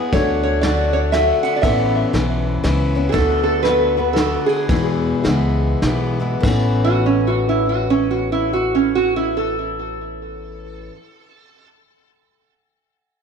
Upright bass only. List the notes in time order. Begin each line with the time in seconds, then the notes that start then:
0.13 D2
1.63 A1
2.14 B1
2.64 C#2
3.14 D2
4.69 E2
5.25 C#2
5.82 B1
6.43 A1